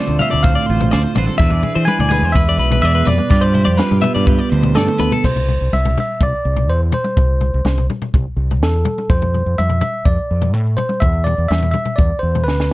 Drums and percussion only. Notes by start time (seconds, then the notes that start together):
0.07 floor tom
0.19 floor tom, mid tom
0.32 floor tom
0.44 kick, floor tom
0.80 floor tom
0.93 snare
1.15 floor tom, mid tom
1.27 mid tom
1.39 kick, floor tom
1.50 floor tom
1.63 floor tom
1.88 mid tom
2.00 floor tom
2.11 floor tom, mid tom
2.35 kick, floor tom
2.71 floor tom
3.07 floor tom
3.18 mid tom
3.30 kick, floor tom
3.55 floor tom
3.78 snare, mid tom
3.91 floor tom
4.03 floor tom, mid tom
4.15 floor tom
4.27 kick, floor tom
4.63 floor tom
4.77 snare
4.88 high tom
5.00 mid tom
5.12 floor tom
5.24 kick, floor tom, crash
5.36 floor tom
5.48 floor tom
5.73 mid tom
5.85 floor tom
5.98 floor tom, mid tom
6.21 kick, floor tom
6.56 floor tom
6.92 floor tom
7.04 mid tom
7.17 kick, floor tom
7.41 floor tom
7.65 snare, mid tom
7.78 floor tom
7.90 floor tom, mid tom
8.02 floor tom
8.14 kick, floor tom
8.51 floor tom
8.63 snare
8.85 floor tom, mid tom
8.98 mid tom
9.10 kick, floor tom
9.22 floor tom
9.34 floor tom
9.59 mid tom
9.69 floor tom
9.81 floor tom, mid tom
10.05 kick, floor tom
10.42 floor tom
10.78 floor tom
10.89 mid tom
11.02 kick, floor tom
11.26 floor tom
11.51 snare, mid tom
11.62 floor tom
11.74 floor tom, mid tom
11.85 floor tom
11.98 kick, floor tom
12.35 floor tom
12.48 snare
12.60 snare